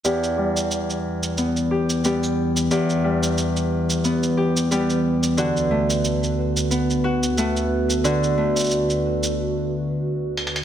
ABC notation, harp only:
X:1
M:4/4
L:1/8
Q:"Swing 16ths" 1/4=90
K:Em
V:1 name="Harp"
[E,,G] G,3 B, G [G,B,G]2 | [E,,G] G,3 B, G [G,B,G]2 | [D,F] A,3 B, F [A,B,F]2 | [D,F] A,3 z4 |]